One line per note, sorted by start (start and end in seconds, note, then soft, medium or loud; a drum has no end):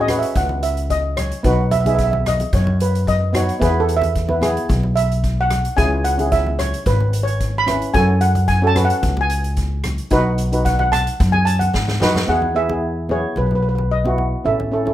0.00 0.22 A1 loud
0.00 0.19 D#5 medium
0.08 0.74 C#4 medium
0.08 0.74 F#4 medium
0.08 0.75 B4 medium
0.08 cross-stick medium
0.08 closed hi-hat medium
0.08 low conga medium
0.19 0.27 E5 medium
0.19 closed hi-hat medium
0.35 1.31 C#2 loud
0.35 0.64 F#5 medium
0.35 kick loud
0.35 closed hi-hat medium
0.35 high conga medium
0.49 high conga medium
0.63 0.91 E5 medium
0.63 closed hi-hat medium
0.77 closed hi-hat medium
0.90 1.15 D#5 medium
0.90 kick medium
0.90 closed hi-hat medium
1.17 1.45 C#5 medium
1.17 cross-stick medium
1.17 closed hi-hat medium
1.17 low conga medium
1.32 closed hi-hat medium
1.43 2.39 B1 loud
1.43 1.68 B3 medium
1.43 1.69 D#4 medium
1.43 1.69 F#4 medium
1.43 1.70 B4 medium
1.43 kick loud
1.43 closed hi-hat medium
1.71 1.79 E5 medium
1.71 closed hi-hat medium
1.71 low conga medium
1.80 1.86 E5 medium
1.85 2.50 B3 medium
1.85 2.50 D#4 medium
1.85 2.50 G#4 medium
1.85 1.94 E5 medium
1.85 closed hi-hat medium
1.85 high conga medium
1.95 2.02 E5 medium
1.95 kick medium
1.95 closed hi-hat medium
2.04 2.10 E5 medium
2.11 2.18 E5 medium
2.11 high conga medium
2.26 2.54 D#5 medium
2.26 cross-stick medium
2.26 closed hi-hat medium
2.26 low conga medium
2.40 closed hi-hat medium
2.40 high conga medium
2.53 3.48 F#2 loud
2.53 2.81 C#5 medium
2.53 kick loud
2.53 closed hi-hat medium
2.53 high conga medium
2.67 high conga medium
2.80 3.09 B4 medium
2.80 closed hi-hat medium
2.95 closed hi-hat medium
3.07 3.35 D#5 medium
3.07 kick medium
3.07 closed hi-hat medium
3.07 low conga medium
3.33 3.50 B3 medium
3.33 3.50 D#4 medium
3.33 3.51 F#4 medium
3.33 3.63 C#5 medium
3.33 cross-stick medium
3.33 closed hi-hat medium
3.33 low conga medium
3.49 closed hi-hat medium
3.60 4.56 E2 loud
3.60 4.02 B3 medium
3.60 4.02 E4 medium
3.60 4.02 G#4 medium
3.60 3.70 B4 medium
3.60 kick loud
3.60 closed hi-hat medium
3.80 3.96 A4 medium
3.89 closed hi-hat medium
3.97 4.74 E5 medium
4.02 closed hi-hat medium
4.02 high conga medium
4.15 kick medium
4.15 closed hi-hat medium
4.28 4.36 B3 medium
4.28 4.37 E4 medium
4.28 4.37 B4 medium
4.28 high conga medium
4.41 5.07 B3 medium
4.41 5.07 E4 medium
4.41 5.08 G#4 medium
4.41 cross-stick medium
4.41 closed hi-hat medium
4.41 low conga medium
4.57 closed hi-hat medium
4.69 5.64 B1 loud
4.69 kick loud
4.69 closed hi-hat medium
4.69 high conga medium
4.83 high conga medium
4.96 5.42 E5 medium
4.96 closed hi-hat medium
5.12 closed hi-hat medium
5.24 kick medium
5.24 closed hi-hat medium
5.41 5.75 F#5 medium
5.50 cross-stick medium
5.50 closed hi-hat medium
5.50 low conga medium
5.65 closed hi-hat medium
5.76 6.73 C#2 loud
5.76 6.02 C#4 medium
5.76 6.02 E4 medium
5.76 6.02 G#4 medium
5.76 6.05 G#5 medium
5.76 kick loud
5.76 closed hi-hat medium
6.04 6.33 F#5 medium
6.04 closed hi-hat medium
6.18 6.83 C#4 medium
6.18 6.84 E4 medium
6.18 6.84 G#4 medium
6.18 closed hi-hat medium
6.18 high conga medium
6.32 6.60 E5 medium
6.32 kick medium
6.32 closed hi-hat medium
6.46 high conga medium
6.59 6.87 C#5 medium
6.59 cross-stick medium
6.59 closed hi-hat medium
6.59 low conga medium
6.74 closed hi-hat medium
6.86 7.81 G#1 medium
6.86 7.20 B4 medium
6.86 kick loud
6.86 closed hi-hat medium
6.86 high conga medium
7.00 high conga medium
7.13 closed hi-hat medium
7.23 7.60 C#5 medium
7.28 closed hi-hat medium
7.41 kick medium
7.41 closed hi-hat medium
7.58 7.96 B5 loud
7.67 7.84 C#4 medium
7.67 7.84 E4 medium
7.67 7.85 B4 medium
7.67 cross-stick medium
7.67 closed hi-hat medium
7.67 low conga medium
7.82 closed hi-hat medium
7.93 8.89 F#2 loud
7.93 8.35 C#4 medium
7.93 8.36 F#4 medium
7.93 8.36 A4 medium
7.93 8.22 G#5 loud
7.93 kick loud
7.93 closed hi-hat medium
8.21 8.46 F#5 medium
8.21 closed hi-hat medium
8.35 closed hi-hat medium
8.35 high conga medium
8.48 8.67 G#5 medium
8.48 kick medium
8.48 closed hi-hat medium
8.62 8.70 C#4 medium
8.62 8.70 F#4 medium
8.62 8.71 A4 medium
8.67 8.75 A5 loud
8.75 9.41 C#4 medium
8.75 9.41 F#4 medium
8.75 9.42 B4 medium
8.75 cross-stick medium
8.75 closed hi-hat medium
8.75 low conga medium
8.85 9.18 F#5 medium
8.90 closed hi-hat medium
9.03 9.98 C#2 loud
9.03 kick loud
9.03 closed hi-hat medium
9.03 high conga medium
9.17 9.71 G#5 medium
9.17 high conga medium
9.30 closed hi-hat medium
9.44 closed hi-hat medium
9.57 kick medium
9.57 closed hi-hat medium
9.84 cross-stick medium
9.84 closed hi-hat medium
9.84 low conga medium
9.98 closed hi-hat medium
10.11 11.06 B1 loud
10.11 10.36 D#4 medium
10.11 10.36 F#4 medium
10.11 10.36 B4 loud
10.11 kick loud
10.11 closed hi-hat medium
10.38 closed hi-hat medium
10.52 11.17 D#4 medium
10.52 11.17 F#4 medium
10.52 11.18 B4 medium
10.52 closed hi-hat medium
10.65 10.78 F#5 medium
10.65 kick medium
10.65 closed hi-hat medium
10.79 10.93 F#5 medium
10.79 high conga medium
10.92 11.31 A5 loud
10.92 cross-stick medium
10.92 closed hi-hat medium
10.92 low conga medium
11.07 closed hi-hat medium
11.20 11.67 F#2 loud
11.20 kick loud
11.20 closed hi-hat medium
11.32 11.46 G#5 medium
11.32 high conga medium
11.45 11.61 A5 medium
11.45 closed hi-hat medium
11.59 11.85 F#5 medium
11.59 closed hi-hat medium
11.59 high conga medium
11.74 11.98 G#2 medium
11.74 kick medium
11.74 snare medium
11.74 high conga medium
11.87 snare medium
11.87 high conga medium
12.00 12.26 F#2 medium
12.00 12.18 D#4 medium
12.00 12.18 F#4 medium
12.00 12.18 B4 loud
12.00 snare medium
12.00 low conga medium
12.15 snare medium
12.15 low conga medium
12.27 13.23 E2 medium
12.27 12.44 B3 medium
12.27 12.45 E4 medium
12.27 12.46 G#4 medium
12.27 12.56 F#5 medium
12.42 high conga medium
12.55 12.63 B3 medium
12.55 12.64 E4 medium
12.55 12.64 G#4 medium
12.55 13.06 E5 medium
12.69 12.93 B3 medium
12.69 12.94 E4 medium
12.69 12.94 G#4 medium
12.69 high conga medium
13.09 13.66 B3 medium
13.09 13.67 E4 medium
13.09 13.67 G#4 medium
13.09 13.23 C#5 medium
13.09 low conga medium
13.36 14.32 B1 loud
13.36 13.45 B4 medium
13.36 high conga medium
13.47 13.53 B4 soft
13.51 low conga medium
13.55 13.60 B4 medium
13.63 13.68 B4 medium
13.69 13.74 B4 medium
13.75 13.82 B4 medium
13.75 high conga medium
13.91 14.42 D#5 medium
14.05 14.29 B3 medium
14.05 14.30 E4 medium
14.05 14.30 F#4 medium
14.05 high conga medium
14.18 low conga medium
14.44 14.94 A1 medium
14.44 14.62 C#4 medium
14.44 14.62 E4 medium
14.44 14.63 A4 medium
14.44 14.94 E5 medium
14.60 high conga medium
14.72 14.80 C#4 medium
14.72 14.81 E4 medium
14.72 14.81 A4 medium
14.86 14.94 C#4 medium
14.86 14.94 E4 medium
14.86 14.94 A4 medium
14.86 high conga medium